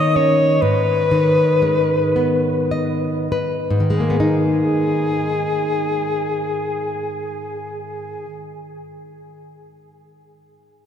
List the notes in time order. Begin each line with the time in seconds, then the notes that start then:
Already playing: D#3 A#3 D#5
0.16 C#4 C#5
0.62 G#2 B4
1.11 D#3
1.62 G#3
2.16 B3
2.71 D#5
3.32 B4
3.71 G#2
3.80 D#3
3.90 G#3
3.96 G#4
4.00 A#3
4.10 B3
4.20 D#4